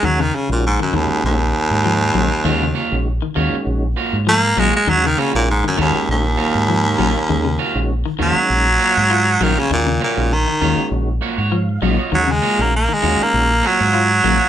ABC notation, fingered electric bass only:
X:1
M:4/4
L:1/16
Q:"Swing 16ths" 1/4=99
K:Ebm
V:1 name="Fingered electric bass" clef=bass
E,,2 z B,,,2 z E,, z B,,,2 z A,,3 B,,, z | E,,2 z B,,,2 z E,, z B,,,2 z A,,3 B,,, z | E,,2 z B,,,2 z E,, z B,,,2 z A,,3 B,,, z | E,,2 z B,,,2 z E,, z B,,,2 z A,,3 B,,, z |
E,,2 z B,,,2 z E,, z B,,,2 z A,,3 B,,, z | E,,2 z B,,,2 z E,, z B,,,2 z A,,3 B,,, z |]